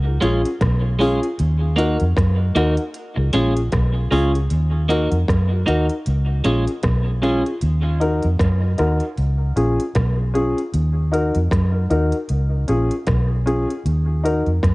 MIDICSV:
0, 0, Header, 1, 6, 480
1, 0, Start_track
1, 0, Key_signature, -6, "minor"
1, 0, Tempo, 778210
1, 857, Time_signature, 4, 2, 24, 8
1, 9095, End_track
2, 0, Start_track
2, 0, Title_t, "Upright piano"
2, 0, Program_c, 0, 0
2, 38, Note_on_c, 0, 65, 24
2, 38, Note_on_c, 0, 68, 25
2, 77, Note_off_c, 0, 65, 0
2, 77, Note_off_c, 0, 68, 0
2, 137, Note_on_c, 0, 61, 86
2, 139, Note_on_c, 0, 65, 82
2, 145, Note_on_c, 0, 68, 96
2, 283, Note_off_c, 0, 61, 0
2, 285, Note_off_c, 0, 65, 0
2, 287, Note_off_c, 0, 68, 0
2, 619, Note_on_c, 0, 61, 93
2, 622, Note_on_c, 0, 65, 83
2, 626, Note_on_c, 0, 68, 96
2, 765, Note_off_c, 0, 61, 0
2, 766, Note_off_c, 0, 65, 0
2, 768, Note_off_c, 0, 68, 0
2, 1096, Note_on_c, 0, 63, 80
2, 1101, Note_on_c, 0, 66, 78
2, 1102, Note_on_c, 0, 70, 88
2, 1243, Note_off_c, 0, 63, 0
2, 1245, Note_off_c, 0, 66, 0
2, 1246, Note_off_c, 0, 70, 0
2, 1575, Note_on_c, 0, 63, 81
2, 1577, Note_on_c, 0, 66, 73
2, 1583, Note_on_c, 0, 70, 87
2, 1723, Note_off_c, 0, 63, 0
2, 1724, Note_off_c, 0, 66, 0
2, 1727, Note_off_c, 0, 70, 0
2, 1961, Note_on_c, 0, 65, 23
2, 1962, Note_on_c, 0, 68, 25
2, 1999, Note_off_c, 0, 65, 0
2, 1999, Note_off_c, 0, 68, 0
2, 2055, Note_on_c, 0, 61, 82
2, 2059, Note_on_c, 0, 65, 76
2, 2062, Note_on_c, 0, 68, 96
2, 2203, Note_off_c, 0, 61, 0
2, 2204, Note_off_c, 0, 65, 0
2, 2206, Note_off_c, 0, 68, 0
2, 2535, Note_on_c, 0, 61, 92
2, 2538, Note_on_c, 0, 65, 81
2, 2541, Note_on_c, 0, 68, 98
2, 2670, Note_off_c, 0, 65, 0
2, 2670, Note_off_c, 0, 68, 0
2, 2679, Note_on_c, 0, 65, 23
2, 2680, Note_on_c, 0, 68, 28
2, 2682, Note_off_c, 0, 61, 0
2, 2718, Note_off_c, 0, 65, 0
2, 2718, Note_off_c, 0, 68, 0
2, 3017, Note_on_c, 0, 63, 77
2, 3020, Note_on_c, 0, 66, 73
2, 3024, Note_on_c, 0, 70, 87
2, 3164, Note_off_c, 0, 63, 0
2, 3165, Note_off_c, 0, 66, 0
2, 3167, Note_off_c, 0, 70, 0
2, 3399, Note_on_c, 0, 66, 23
2, 3399, Note_on_c, 0, 70, 24
2, 3438, Note_off_c, 0, 66, 0
2, 3438, Note_off_c, 0, 70, 0
2, 3497, Note_on_c, 0, 63, 78
2, 3501, Note_on_c, 0, 66, 68
2, 3506, Note_on_c, 0, 70, 83
2, 3644, Note_off_c, 0, 63, 0
2, 3646, Note_off_c, 0, 66, 0
2, 3648, Note_off_c, 0, 70, 0
2, 3977, Note_on_c, 0, 61, 78
2, 3978, Note_on_c, 0, 65, 75
2, 3982, Note_on_c, 0, 68, 92
2, 4124, Note_off_c, 0, 61, 0
2, 4124, Note_off_c, 0, 65, 0
2, 4126, Note_off_c, 0, 68, 0
2, 4452, Note_on_c, 0, 61, 87
2, 4457, Note_on_c, 0, 65, 77
2, 4460, Note_on_c, 0, 68, 96
2, 4590, Note_off_c, 0, 65, 0
2, 4590, Note_off_c, 0, 68, 0
2, 4599, Note_on_c, 0, 65, 22
2, 4599, Note_on_c, 0, 68, 25
2, 4601, Note_off_c, 0, 61, 0
2, 4638, Note_off_c, 0, 65, 0
2, 4638, Note_off_c, 0, 68, 0
2, 4934, Note_on_c, 0, 63, 79
2, 4937, Note_on_c, 0, 66, 70
2, 4941, Note_on_c, 0, 70, 91
2, 5083, Note_off_c, 0, 63, 0
2, 5084, Note_off_c, 0, 66, 0
2, 5086, Note_off_c, 0, 70, 0
2, 5320, Note_on_c, 0, 70, 25
2, 5321, Note_on_c, 0, 66, 21
2, 5359, Note_off_c, 0, 66, 0
2, 5359, Note_off_c, 0, 70, 0
2, 5415, Note_on_c, 0, 63, 80
2, 5418, Note_on_c, 0, 66, 70
2, 5422, Note_on_c, 0, 70, 86
2, 5563, Note_off_c, 0, 63, 0
2, 5565, Note_off_c, 0, 66, 0
2, 5567, Note_off_c, 0, 70, 0
2, 5897, Note_on_c, 0, 61, 84
2, 5901, Note_on_c, 0, 65, 80
2, 5903, Note_on_c, 0, 68, 90
2, 6044, Note_off_c, 0, 61, 0
2, 6046, Note_off_c, 0, 65, 0
2, 6047, Note_off_c, 0, 68, 0
2, 6376, Note_on_c, 0, 61, 86
2, 6378, Note_on_c, 0, 65, 78
2, 6383, Note_on_c, 0, 68, 98
2, 6524, Note_off_c, 0, 61, 0
2, 6525, Note_off_c, 0, 65, 0
2, 6527, Note_off_c, 0, 68, 0
2, 6858, Note_on_c, 0, 63, 79
2, 6861, Note_on_c, 0, 66, 78
2, 6865, Note_on_c, 0, 70, 90
2, 7005, Note_off_c, 0, 63, 0
2, 7006, Note_off_c, 0, 66, 0
2, 7009, Note_off_c, 0, 70, 0
2, 7243, Note_on_c, 0, 66, 23
2, 7243, Note_on_c, 0, 70, 25
2, 7281, Note_off_c, 0, 66, 0
2, 7281, Note_off_c, 0, 70, 0
2, 7341, Note_on_c, 0, 63, 79
2, 7344, Note_on_c, 0, 66, 71
2, 7345, Note_on_c, 0, 70, 86
2, 7487, Note_off_c, 0, 63, 0
2, 7488, Note_off_c, 0, 66, 0
2, 7489, Note_off_c, 0, 70, 0
2, 7820, Note_on_c, 0, 61, 86
2, 7824, Note_on_c, 0, 65, 74
2, 7828, Note_on_c, 0, 68, 96
2, 7966, Note_off_c, 0, 61, 0
2, 7969, Note_off_c, 0, 65, 0
2, 7970, Note_off_c, 0, 68, 0
2, 8301, Note_on_c, 0, 61, 88
2, 8305, Note_on_c, 0, 65, 85
2, 8309, Note_on_c, 0, 68, 96
2, 8435, Note_off_c, 0, 65, 0
2, 8436, Note_off_c, 0, 68, 0
2, 8444, Note_on_c, 0, 65, 23
2, 8445, Note_on_c, 0, 68, 27
2, 8447, Note_off_c, 0, 61, 0
2, 8482, Note_off_c, 0, 65, 0
2, 8482, Note_off_c, 0, 68, 0
2, 8780, Note_on_c, 0, 63, 82
2, 8783, Note_on_c, 0, 66, 68
2, 8788, Note_on_c, 0, 70, 92
2, 8927, Note_off_c, 0, 63, 0
2, 8928, Note_off_c, 0, 66, 0
2, 8931, Note_off_c, 0, 70, 0
2, 9095, End_track
3, 0, Start_track
3, 0, Title_t, "Clean electric guitar"
3, 0, Program_c, 1, 27
3, 129, Note_on_c, 1, 56, 83
3, 133, Note_on_c, 1, 61, 87
3, 136, Note_on_c, 1, 65, 87
3, 252, Note_off_c, 1, 56, 0
3, 254, Note_off_c, 1, 61, 0
3, 256, Note_off_c, 1, 65, 0
3, 612, Note_on_c, 1, 56, 80
3, 618, Note_on_c, 1, 61, 79
3, 624, Note_on_c, 1, 65, 83
3, 733, Note_off_c, 1, 56, 0
3, 737, Note_off_c, 1, 61, 0
3, 740, Note_off_c, 1, 65, 0
3, 1087, Note_on_c, 1, 58, 76
3, 1093, Note_on_c, 1, 63, 73
3, 1098, Note_on_c, 1, 66, 90
3, 1211, Note_off_c, 1, 58, 0
3, 1214, Note_off_c, 1, 63, 0
3, 1217, Note_off_c, 1, 66, 0
3, 1576, Note_on_c, 1, 58, 85
3, 1583, Note_on_c, 1, 63, 88
3, 1585, Note_on_c, 1, 66, 91
3, 1695, Note_off_c, 1, 58, 0
3, 1699, Note_off_c, 1, 63, 0
3, 1700, Note_off_c, 1, 66, 0
3, 2055, Note_on_c, 1, 56, 84
3, 2058, Note_on_c, 1, 61, 88
3, 2062, Note_on_c, 1, 65, 94
3, 2175, Note_off_c, 1, 56, 0
3, 2177, Note_off_c, 1, 61, 0
3, 2179, Note_off_c, 1, 65, 0
3, 2534, Note_on_c, 1, 56, 72
3, 2540, Note_on_c, 1, 61, 84
3, 2546, Note_on_c, 1, 65, 82
3, 2655, Note_off_c, 1, 56, 0
3, 2658, Note_off_c, 1, 61, 0
3, 2661, Note_off_c, 1, 65, 0
3, 3014, Note_on_c, 1, 58, 70
3, 3017, Note_on_c, 1, 63, 79
3, 3021, Note_on_c, 1, 66, 85
3, 3135, Note_off_c, 1, 58, 0
3, 3136, Note_off_c, 1, 63, 0
3, 3138, Note_off_c, 1, 66, 0
3, 3490, Note_on_c, 1, 58, 65
3, 3494, Note_on_c, 1, 63, 76
3, 3501, Note_on_c, 1, 66, 76
3, 3613, Note_off_c, 1, 58, 0
3, 3615, Note_off_c, 1, 63, 0
3, 3618, Note_off_c, 1, 66, 0
3, 3974, Note_on_c, 1, 56, 72
3, 3978, Note_on_c, 1, 61, 83
3, 3983, Note_on_c, 1, 65, 79
3, 4095, Note_off_c, 1, 56, 0
3, 4097, Note_off_c, 1, 61, 0
3, 4100, Note_off_c, 1, 65, 0
3, 4456, Note_on_c, 1, 56, 71
3, 4460, Note_on_c, 1, 61, 74
3, 4464, Note_on_c, 1, 65, 76
3, 4576, Note_off_c, 1, 56, 0
3, 4578, Note_off_c, 1, 61, 0
3, 4580, Note_off_c, 1, 65, 0
3, 9095, End_track
4, 0, Start_track
4, 0, Title_t, "Fingered electric bass"
4, 0, Program_c, 2, 33
4, 0, Note_on_c, 2, 37, 109
4, 118, Note_off_c, 2, 37, 0
4, 139, Note_on_c, 2, 34, 98
4, 266, Note_off_c, 2, 34, 0
4, 378, Note_on_c, 2, 35, 92
4, 732, Note_off_c, 2, 35, 0
4, 863, Note_on_c, 2, 39, 99
4, 1214, Note_off_c, 2, 39, 0
4, 1244, Note_on_c, 2, 41, 93
4, 1332, Note_off_c, 2, 41, 0
4, 1340, Note_on_c, 2, 42, 99
4, 1558, Note_off_c, 2, 42, 0
4, 1578, Note_on_c, 2, 39, 90
4, 1705, Note_off_c, 2, 39, 0
4, 1956, Note_on_c, 2, 37, 85
4, 2048, Note_off_c, 2, 37, 0
4, 2060, Note_on_c, 2, 34, 83
4, 2278, Note_off_c, 2, 34, 0
4, 2299, Note_on_c, 2, 35, 81
4, 2517, Note_off_c, 2, 35, 0
4, 2539, Note_on_c, 2, 37, 90
4, 2757, Note_off_c, 2, 37, 0
4, 2781, Note_on_c, 2, 39, 99
4, 3134, Note_off_c, 2, 39, 0
4, 3156, Note_on_c, 2, 41, 84
4, 3248, Note_off_c, 2, 41, 0
4, 3260, Note_on_c, 2, 42, 90
4, 3478, Note_off_c, 2, 42, 0
4, 3504, Note_on_c, 2, 39, 83
4, 3628, Note_off_c, 2, 39, 0
4, 3745, Note_on_c, 2, 37, 104
4, 3961, Note_off_c, 2, 37, 0
4, 3983, Note_on_c, 2, 34, 94
4, 4108, Note_off_c, 2, 34, 0
4, 4218, Note_on_c, 2, 35, 91
4, 4573, Note_off_c, 2, 35, 0
4, 4703, Note_on_c, 2, 39, 98
4, 5055, Note_off_c, 2, 39, 0
4, 5085, Note_on_c, 2, 41, 85
4, 5174, Note_off_c, 2, 41, 0
4, 5179, Note_on_c, 2, 42, 96
4, 5398, Note_off_c, 2, 42, 0
4, 5424, Note_on_c, 2, 39, 85
4, 5549, Note_off_c, 2, 39, 0
4, 5662, Note_on_c, 2, 37, 98
4, 5880, Note_off_c, 2, 37, 0
4, 5899, Note_on_c, 2, 34, 92
4, 6026, Note_off_c, 2, 34, 0
4, 6140, Note_on_c, 2, 35, 87
4, 6494, Note_off_c, 2, 35, 0
4, 6625, Note_on_c, 2, 39, 105
4, 6977, Note_off_c, 2, 39, 0
4, 7006, Note_on_c, 2, 41, 87
4, 7094, Note_off_c, 2, 41, 0
4, 7104, Note_on_c, 2, 42, 98
4, 7321, Note_off_c, 2, 42, 0
4, 7346, Note_on_c, 2, 39, 90
4, 7470, Note_off_c, 2, 39, 0
4, 7586, Note_on_c, 2, 37, 99
4, 7803, Note_off_c, 2, 37, 0
4, 7828, Note_on_c, 2, 34, 92
4, 7951, Note_off_c, 2, 34, 0
4, 8064, Note_on_c, 2, 35, 93
4, 8417, Note_off_c, 2, 35, 0
4, 8546, Note_on_c, 2, 39, 96
4, 8898, Note_off_c, 2, 39, 0
4, 8923, Note_on_c, 2, 41, 78
4, 9013, Note_off_c, 2, 41, 0
4, 9026, Note_on_c, 2, 42, 93
4, 9095, Note_off_c, 2, 42, 0
4, 9095, End_track
5, 0, Start_track
5, 0, Title_t, "Muted clean electric guitar strokes"
5, 1951, Note_on_c, 9, 29, 41
5, 2013, Note_off_c, 9, 29, 0
5, 9095, End_track
6, 0, Start_track
6, 0, Title_t, "Drums"
6, 137, Note_on_c, 9, 42, 78
6, 199, Note_off_c, 9, 42, 0
6, 281, Note_on_c, 9, 42, 61
6, 343, Note_off_c, 9, 42, 0
6, 377, Note_on_c, 9, 36, 114
6, 377, Note_on_c, 9, 42, 85
6, 384, Note_on_c, 9, 37, 115
6, 439, Note_off_c, 9, 36, 0
6, 439, Note_off_c, 9, 42, 0
6, 446, Note_off_c, 9, 37, 0
6, 624, Note_on_c, 9, 46, 48
6, 685, Note_off_c, 9, 46, 0
6, 761, Note_on_c, 9, 42, 47
6, 822, Note_off_c, 9, 42, 0
6, 858, Note_on_c, 9, 42, 102
6, 920, Note_off_c, 9, 42, 0
6, 1101, Note_on_c, 9, 42, 86
6, 1163, Note_off_c, 9, 42, 0
6, 1233, Note_on_c, 9, 42, 43
6, 1295, Note_off_c, 9, 42, 0
6, 1337, Note_on_c, 9, 36, 115
6, 1343, Note_on_c, 9, 37, 108
6, 1347, Note_on_c, 9, 42, 99
6, 1399, Note_off_c, 9, 36, 0
6, 1404, Note_off_c, 9, 37, 0
6, 1409, Note_off_c, 9, 42, 0
6, 1579, Note_on_c, 9, 42, 61
6, 1586, Note_on_c, 9, 37, 58
6, 1641, Note_off_c, 9, 42, 0
6, 1647, Note_off_c, 9, 37, 0
6, 1711, Note_on_c, 9, 42, 48
6, 1773, Note_off_c, 9, 42, 0
6, 1815, Note_on_c, 9, 42, 93
6, 1877, Note_off_c, 9, 42, 0
6, 2053, Note_on_c, 9, 42, 83
6, 2115, Note_off_c, 9, 42, 0
6, 2199, Note_on_c, 9, 42, 62
6, 2261, Note_off_c, 9, 42, 0
6, 2294, Note_on_c, 9, 42, 88
6, 2296, Note_on_c, 9, 36, 110
6, 2301, Note_on_c, 9, 37, 101
6, 2355, Note_off_c, 9, 42, 0
6, 2358, Note_off_c, 9, 36, 0
6, 2363, Note_off_c, 9, 37, 0
6, 2540, Note_on_c, 9, 46, 51
6, 2601, Note_off_c, 9, 46, 0
6, 2683, Note_on_c, 9, 42, 46
6, 2745, Note_off_c, 9, 42, 0
6, 2776, Note_on_c, 9, 42, 96
6, 2838, Note_off_c, 9, 42, 0
6, 3023, Note_on_c, 9, 42, 79
6, 3084, Note_off_c, 9, 42, 0
6, 3155, Note_on_c, 9, 42, 46
6, 3216, Note_off_c, 9, 42, 0
6, 3258, Note_on_c, 9, 36, 109
6, 3264, Note_on_c, 9, 37, 114
6, 3268, Note_on_c, 9, 42, 87
6, 3319, Note_off_c, 9, 36, 0
6, 3325, Note_off_c, 9, 37, 0
6, 3330, Note_off_c, 9, 42, 0
6, 3502, Note_on_c, 9, 42, 58
6, 3563, Note_off_c, 9, 42, 0
6, 3635, Note_on_c, 9, 42, 46
6, 3697, Note_off_c, 9, 42, 0
6, 3738, Note_on_c, 9, 42, 90
6, 3800, Note_off_c, 9, 42, 0
6, 3975, Note_on_c, 9, 42, 73
6, 4037, Note_off_c, 9, 42, 0
6, 4118, Note_on_c, 9, 42, 58
6, 4180, Note_off_c, 9, 42, 0
6, 4212, Note_on_c, 9, 42, 85
6, 4216, Note_on_c, 9, 36, 108
6, 4220, Note_on_c, 9, 37, 110
6, 4274, Note_off_c, 9, 42, 0
6, 4278, Note_off_c, 9, 36, 0
6, 4281, Note_off_c, 9, 37, 0
6, 4461, Note_on_c, 9, 42, 69
6, 4523, Note_off_c, 9, 42, 0
6, 4603, Note_on_c, 9, 42, 46
6, 4665, Note_off_c, 9, 42, 0
6, 4696, Note_on_c, 9, 42, 97
6, 4758, Note_off_c, 9, 42, 0
6, 4942, Note_on_c, 9, 42, 83
6, 5004, Note_off_c, 9, 42, 0
6, 5073, Note_on_c, 9, 42, 46
6, 5134, Note_off_c, 9, 42, 0
6, 5177, Note_on_c, 9, 36, 111
6, 5181, Note_on_c, 9, 37, 113
6, 5186, Note_on_c, 9, 42, 87
6, 5239, Note_off_c, 9, 36, 0
6, 5243, Note_off_c, 9, 37, 0
6, 5247, Note_off_c, 9, 42, 0
6, 5416, Note_on_c, 9, 42, 60
6, 5422, Note_on_c, 9, 37, 64
6, 5478, Note_off_c, 9, 42, 0
6, 5484, Note_off_c, 9, 37, 0
6, 5552, Note_on_c, 9, 42, 45
6, 5613, Note_off_c, 9, 42, 0
6, 5659, Note_on_c, 9, 42, 94
6, 5721, Note_off_c, 9, 42, 0
6, 5901, Note_on_c, 9, 42, 78
6, 5963, Note_off_c, 9, 42, 0
6, 6043, Note_on_c, 9, 42, 58
6, 6105, Note_off_c, 9, 42, 0
6, 6137, Note_on_c, 9, 42, 88
6, 6139, Note_on_c, 9, 36, 111
6, 6144, Note_on_c, 9, 37, 109
6, 6199, Note_off_c, 9, 42, 0
6, 6201, Note_off_c, 9, 36, 0
6, 6206, Note_off_c, 9, 37, 0
6, 6386, Note_on_c, 9, 42, 72
6, 6448, Note_off_c, 9, 42, 0
6, 6527, Note_on_c, 9, 42, 42
6, 6589, Note_off_c, 9, 42, 0
6, 6623, Note_on_c, 9, 42, 98
6, 6685, Note_off_c, 9, 42, 0
6, 6870, Note_on_c, 9, 42, 81
6, 6931, Note_off_c, 9, 42, 0
6, 7000, Note_on_c, 9, 42, 46
6, 7061, Note_off_c, 9, 42, 0
6, 7102, Note_on_c, 9, 36, 107
6, 7106, Note_on_c, 9, 37, 115
6, 7111, Note_on_c, 9, 42, 94
6, 7163, Note_off_c, 9, 36, 0
6, 7168, Note_off_c, 9, 37, 0
6, 7173, Note_off_c, 9, 42, 0
6, 7343, Note_on_c, 9, 42, 57
6, 7405, Note_off_c, 9, 42, 0
6, 7476, Note_on_c, 9, 42, 47
6, 7538, Note_off_c, 9, 42, 0
6, 7579, Note_on_c, 9, 42, 83
6, 7641, Note_off_c, 9, 42, 0
6, 7821, Note_on_c, 9, 42, 72
6, 7883, Note_off_c, 9, 42, 0
6, 7963, Note_on_c, 9, 42, 58
6, 8025, Note_off_c, 9, 42, 0
6, 8060, Note_on_c, 9, 42, 86
6, 8062, Note_on_c, 9, 36, 111
6, 8067, Note_on_c, 9, 37, 102
6, 8121, Note_off_c, 9, 42, 0
6, 8124, Note_off_c, 9, 36, 0
6, 8129, Note_off_c, 9, 37, 0
6, 8310, Note_on_c, 9, 42, 68
6, 8372, Note_off_c, 9, 42, 0
6, 8453, Note_on_c, 9, 42, 44
6, 8514, Note_off_c, 9, 42, 0
6, 8547, Note_on_c, 9, 42, 95
6, 8609, Note_off_c, 9, 42, 0
6, 8792, Note_on_c, 9, 42, 79
6, 8853, Note_off_c, 9, 42, 0
6, 8920, Note_on_c, 9, 42, 43
6, 8982, Note_off_c, 9, 42, 0
6, 9022, Note_on_c, 9, 36, 114
6, 9026, Note_on_c, 9, 37, 115
6, 9031, Note_on_c, 9, 42, 89
6, 9084, Note_off_c, 9, 36, 0
6, 9088, Note_off_c, 9, 37, 0
6, 9093, Note_off_c, 9, 42, 0
6, 9095, End_track
0, 0, End_of_file